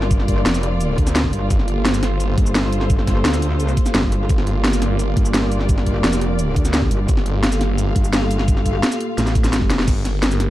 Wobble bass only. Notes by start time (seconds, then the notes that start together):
Already playing: G1
0.46 F1
0.98 D2
1.33 G1
2.38 G1
3.25 D2
3.95 G1
5.17 G1
6.04 F1
6.56 D2
6.91 G1
7.96 G1
9.18 A1